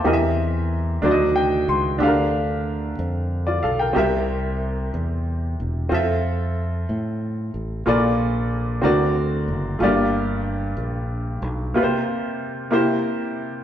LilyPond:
<<
  \new Staff \with { instrumentName = "Grand piano" } { \time 6/8 \key c \mixolydian \tempo 4. = 62 << { <c'' a''>16 r4. r16 g''8 c'''8 | r2 r16 <f' d''>16 <a' f''>16 <bes' g''>16~ | <bes' g''>16 r2 r8. | r2. |
r2. | r2. | r2. | } \\ { <c' g' bes' ees'' e''>4. <fis d' c'' d'' ees''>4. | <d' g' a' bes' f''>2. | <c' g' bes' e''>2. | <c' f' a' e''>2. |
<bes f' a' d''>4. <c' fis' bes' d''>4. | <a bes f' g' d''>2. | <bes f' g' b' c''>4. <bes e' g' c''>4. | } >> }
  \new Staff \with { instrumentName = "Grand piano" } { \clef bass \time 6/8 \key c \mixolydian e4. ees4. | d4. r4. | c4. r4. | r2. |
bes,4. d4. | g,4. r4. | c4. c4. | }
  \new Staff \with { instrumentName = "Fingered electric bass" } { \clef bass \time 6/8 \key c \mixolydian e,4. d,4 des,8 | d,4. f,4 b,,8 | c,4. e,4 e,,8 | f,4. a,4 a,,8 |
bes,,4. d,4 fis,,8 | g,,4. bes,,4 b,,8 | r2. | }
>>